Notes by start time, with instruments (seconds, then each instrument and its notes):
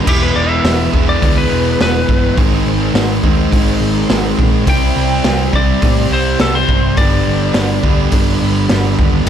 0.05 picked electric bass E1, distorted electric guitar E2 B2 E3 G#3 B3 E4 G#4, tonewheel organ G#3 B3, lead electric guitar G4, kick, crash
0.09 tonewheel organ E4 B4
0.23 lead electric guitar B4
0.36 picked electric bass E1, lead electric guitar D5
0.49 lead electric guitar E5
0.64 picked electric bass E1, snare, open hi-hat
0.93 picked electric bass E1, distorted electric guitar E3 G#3 B3 E4 G#4, kick
1.09 lead electric guitar D5
1.22 picked electric bass D2, distorted electric guitar E2 B2 E3, kick, open hi-hat
1.38 lead electric guitar B4
1.51 picked electric bass E1
1.80 picked electric bass E1, lead electric guitar B4, snare, open hi-hat
2.09 picked electric bass G1, kick
2.36 picked electric bass G#1, distorted electric guitar G#2 D#3 G#3 C4 D#4, tonewheel organ C4 D#4 C5, kick, open hi-hat
2.66 picked electric bass G#1
2.94 picked electric bass G#1, snare, open hi-hat
3.24 picked electric bass D#2, distorted electric guitar G#2 D#3 G#3 C4 D#4, kick
3.50 picked electric bass G#1, distorted electric guitar G#2 D#3 G#3, kick, open hi-hat
3.81 picked electric bass G#1
4.09 picked electric bass G#1, snare, open hi-hat
4.39 picked electric bass A#1, kick
4.66 picked electric bass C2, distorted electric guitar C3 G3 C4 E4, tonewheel organ G3 E4, lead electric guitar G5, kick, open hi-hat
4.96 picked electric bass C2
5.24 picked electric bass C2, snare, open hi-hat
5.53 picked electric bass C2, distorted electric guitar C3 G3 C4 E4, lead electric guitar D5, kick
5.82 picked electric bass A2, distorted electric guitar C3 G3 C4, kick, open hi-hat
6.11 picked electric bass C2, lead electric guitar C5
6.40 picked electric bass C2, lead electric guitar A4, snare, open hi-hat
6.55 lead electric guitar C5
6.69 picked electric bass G1, kick
6.96 picked electric bass G1, distorted electric guitar G2 D3 G3 B3 D4, tonewheel organ B3 D4 B4, lead electric guitar D5, kick, open hi-hat
7.27 picked electric bass G1
7.54 picked electric bass G1, snare, open hi-hat
7.83 picked electric bass D2, distorted electric guitar G2 D3 G3 B3 D4, kick
8.12 picked electric bass G1, distorted electric guitar G2 D3 G3, kick, open hi-hat
8.42 picked electric bass G1
8.69 picked electric bass G1, snare, open hi-hat
8.98 picked electric bass D#2, kick
9.26 distorted electric guitar E3, tonewheel organ E4